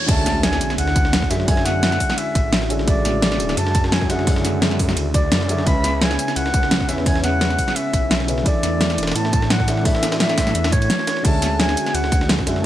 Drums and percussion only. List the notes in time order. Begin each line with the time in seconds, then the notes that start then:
0.09 kick, closed hi-hat, crash, ride
0.26 snare, closed hi-hat, ride, tambourine
0.43 snare, closed hi-hat, ride
0.53 snare, tambourine
0.61 closed hi-hat, ride, tambourine
0.70 snare, tambourine
0.78 closed hi-hat, ride
0.88 snare
0.96 kick, closed hi-hat, ride, tambourine
1.05 snare
1.13 snare, closed hi-hat, ride
1.22 kick, snare
1.31 snare, closed hi-hat, ride, tambourine
1.40 snare
1.48 kick, closed hi-hat, open hi-hat
1.57 snare
1.65 snare, closed hi-hat, ride, tambourine
1.83 snare, closed hi-hat, ride
1.92 snare, tambourine
2.00 kick, open hi-hat, ride, tambourine
2.10 snare, tambourine
2.18 closed hi-hat, ride
2.35 kick, closed hi-hat, ride, tambourine
2.53 snare, closed hi-hat, ride
2.62 snare
2.70 closed hi-hat, ride, tambourine
2.79 snare
2.88 kick, closed hi-hat, ride
3.05 snare, closed hi-hat, ride, tambourine
3.22 snare, closed hi-hat, ride
3.32 snare, tambourine
3.40 closed hi-hat, ride, tambourine
3.49 snare, tambourine
3.57 closed hi-hat, ride
3.67 snare
3.75 kick, closed hi-hat, ride, tambourine
3.84 snare
3.92 snare, closed hi-hat, ride
4.02 kick, snare
4.10 snare, closed hi-hat, ride, tambourine
4.19 snare
4.27 kick, closed hi-hat, open hi-hat
4.36 snare
4.45 snare, closed hi-hat, ride, tambourine
4.62 snare, closed hi-hat, ride
4.71 snare, tambourine
4.79 kick, open hi-hat, ride, tambourine
4.89 snare, tambourine
4.97 closed hi-hat, ride
5.14 kick, closed hi-hat, ride, tambourine
5.32 snare, closed hi-hat, ride
5.41 snare
5.49 closed hi-hat, ride, tambourine
5.58 snare
5.67 kick, closed hi-hat, ride
5.84 snare, closed hi-hat, ride, tambourine
6.02 snare, closed hi-hat, ride
6.11 snare, tambourine
6.19 closed hi-hat, ride, tambourine
6.28 snare, tambourine
6.36 closed hi-hat, ride
6.46 snare
6.54 kick, closed hi-hat, ride, tambourine
6.63 snare
6.71 snare, closed hi-hat, ride
6.81 kick, snare
6.89 snare, closed hi-hat, ride, tambourine
6.98 snare
7.06 kick, closed hi-hat, open hi-hat
7.16 snare
7.24 snare, closed hi-hat, ride, tambourine
7.41 snare, closed hi-hat, ride
7.50 snare, tambourine
7.59 kick, open hi-hat, ride, tambourine
7.68 snare, tambourine
7.76 closed hi-hat, ride
7.93 kick, closed hi-hat, ride, tambourine
8.11 snare, closed hi-hat, ride
8.20 snare
8.28 closed hi-hat, ride, tambourine
8.38 snare
8.46 kick, closed hi-hat, ride
8.63 snare, closed hi-hat, ride, tambourine
8.81 snare, closed hi-hat, ride
8.90 snare, tambourine
8.98 closed hi-hat, ride, tambourine
9.03 snare, ride
9.07 snare, ride, tambourine
9.12 snare, closed hi-hat, ride
9.16 ride
9.25 snare
9.33 kick, closed hi-hat, ride, tambourine
9.42 snare
9.50 snare, closed hi-hat, ride
9.60 kick, snare
9.68 snare, closed hi-hat, ride, tambourine
9.77 snare
9.85 kick, closed hi-hat, open hi-hat
9.95 snare
10.03 snare, closed hi-hat, ride, tambourine
10.12 snare, ride
10.20 snare, closed hi-hat, ride
10.29 snare, tambourine
10.38 kick, snare, open hi-hat, ride, tambourine
10.47 snare, tambourine
10.55 closed hi-hat, ride
10.64 snare, ride
10.72 kick, closed hi-hat, tambourine
10.82 ride, tambourine
10.90 snare, closed hi-hat, ride
10.99 snare
11.07 snare, closed hi-hat, ride, tambourine
11.17 snare
11.25 kick, closed hi-hat, crash, ride
11.42 snare, closed hi-hat, ride, tambourine
11.60 snare, closed hi-hat, ride
11.69 snare, tambourine
11.77 closed hi-hat, ride, tambourine
11.86 snare, tambourine
11.95 closed hi-hat, ride
12.04 snare
12.12 kick, closed hi-hat, ride, tambourine
12.21 snare
12.29 snare, closed hi-hat, ride
12.39 kick, snare
12.47 snare, closed hi-hat, ride, tambourine
12.56 snare